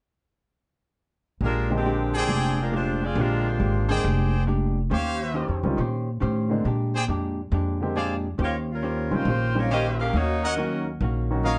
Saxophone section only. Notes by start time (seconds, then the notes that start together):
1.44 G#3 D4 F4 A#4
1.75 F3 C4 D4 G4
2.17 F3 C4 D4 G#4
2.61 G#3 D4 F4 A#4
2.75 G#3 D4 F4 C5
3.03 C4 F4 G#4 D5
3.19 G#3 D4 F4 A#4
3.48 G#3 D4 F4 C5
8.42 A#3 F4 G4 C#5
8.71 G3 C#4 F4 A#4
9.13 A#3 F4 G4 C5
9.56 A#3 F4 G4 C#5
9.72 C#4 G4 A#4 D#5
9.99 C#4 G4 A#4 F5
10.15 A#3 D#4 F#4 C#5
10.44 C#4 F#4 A#4 D#5